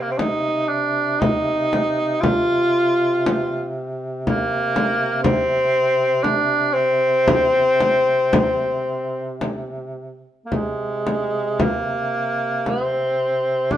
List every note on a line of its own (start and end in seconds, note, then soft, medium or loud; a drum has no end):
0.00 10.34 C3 soft
0.00 0.12 A#3 medium
0.11 0.19 C4 medium
0.18 0.70 D#4 medium
0.18 frame drum soft
0.68 1.21 D4 medium
1.19 2.22 D#4 medium
1.19 frame drum medium
1.73 frame drum medium
2.20 3.75 F4 medium
2.20 frame drum medium
3.26 frame drum medium
4.26 5.20 A#3 medium
4.26 frame drum medium
4.76 frame drum medium
5.23 6.24 C4 medium
5.23 frame drum medium
6.23 6.75 D4 medium
6.23 frame drum soft
6.73 9.40 C4 loud
7.28 frame drum medium
7.81 frame drum medium
8.33 frame drum medium
9.41 frame drum medium
10.45 10.55 A#3 soft
10.51 13.77 C3 soft
10.51 11.63 G#3 medium
10.51 frame drum soft
11.07 frame drum soft
11.60 12.70 A#3 medium
11.60 frame drum medium
12.66 13.73 C4 medium
12.66 frame drum soft
13.71 13.77 D4 medium
13.71 frame drum soft